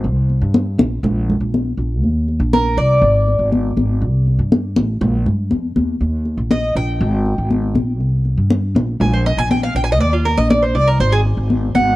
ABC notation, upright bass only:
X:1
M:4/4
L:1/16
Q:1/4=120
K:Eb
V:1 name="Upright bass" clef=bass
C,,3 G,,3 B,,,2 B,,,3 B,,,3 B,,,2 | E,,3 B,,,3 C,,2 A,,,3 A,,,3 A,,,2 | C,,3 G,,3 =A,,,2 B,,,2 G,,2 F,,2 E,,2 | E,,3 B,,,3 B,,,2 A,,,3 A,,,3 B,,,2 |
C,,3 G,,3 B,,,2 B,,,3 B,,,3 B,,,2 | E,,3 B,,,3 C,,2 A,,,3 A,,,3 A,,,2 |]